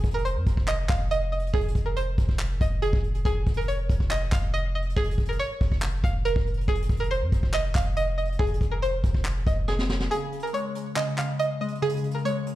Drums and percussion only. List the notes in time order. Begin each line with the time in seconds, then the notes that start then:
0.04 kick, closed hi-hat
0.11 closed hi-hat
0.18 closed hi-hat
0.25 closed hi-hat
0.46 kick, closed hi-hat
0.57 kick
0.68 clap, closed hi-hat
0.89 kick, clap, closed hi-hat
1.11 closed hi-hat
1.32 closed hi-hat, open hi-hat
1.39 closed hi-hat
1.47 closed hi-hat
1.54 kick, closed hi-hat
1.61 closed hi-hat
1.68 closed hi-hat
1.75 kick, closed hi-hat
1.97 closed hi-hat
2.18 kick, closed hi-hat
2.29 kick
2.39 clap, closed hi-hat
2.61 kick, closed hi-hat
2.82 closed hi-hat
2.93 kick
3.04 closed hi-hat
3.14 closed hi-hat
3.25 kick, closed hi-hat
3.47 kick, closed hi-hat
3.54 closed hi-hat
3.61 closed hi-hat
3.68 closed hi-hat
3.89 kick, closed hi-hat
4.00 kick
4.11 clap, closed hi-hat
4.32 kick, clap, closed hi-hat
4.54 closed hi-hat
4.75 closed hi-hat
4.82 closed hi-hat
4.89 closed hi-hat
4.97 kick, closed hi-hat
5.04 closed hi-hat
5.11 closed hi-hat
5.18 kick, closed hi-hat
5.25 closed hi-hat
5.32 closed hi-hat
5.39 closed hi-hat
5.61 kick, open hi-hat
5.72 kick
5.82 clap, closed hi-hat
6.04 kick, closed hi-hat
6.25 closed hi-hat
6.36 kick
6.47 closed hi-hat, open hi-hat
6.54 closed hi-hat
6.61 closed hi-hat
6.68 kick, closed hi-hat
6.75 closed hi-hat
6.82 closed hi-hat
6.89 kick, closed hi-hat
6.97 closed hi-hat
7.04 closed hi-hat
7.11 closed hi-hat
7.32 kick, closed hi-hat
7.43 kick
7.54 clap, closed hi-hat
7.75 kick, clap, closed hi-hat
7.97 closed hi-hat
8.18 closed hi-hat
8.25 closed hi-hat
8.32 closed hi-hat
8.39 kick, closed hi-hat
8.47 closed hi-hat
8.54 closed hi-hat
8.61 kick, closed hi-hat
8.82 closed hi-hat
9.04 kick, closed hi-hat
9.14 kick
9.25 clap, closed hi-hat
9.47 kick, closed hi-hat
9.68 snare
9.79 snare
9.89 snare
10.00 snare
10.11 closed hi-hat
10.32 closed hi-hat
10.39 closed hi-hat
10.47 closed hi-hat
10.54 closed hi-hat
10.75 closed hi-hat
10.96 clap, closed hi-hat
11.18 clap, closed hi-hat
11.39 closed hi-hat
11.61 closed hi-hat
11.68 closed hi-hat
11.75 closed hi-hat
11.82 closed hi-hat
11.89 closed hi-hat
11.97 closed hi-hat
12.04 closed hi-hat
12.11 closed hi-hat
12.18 closed hi-hat
12.25 closed hi-hat
12.47 closed hi-hat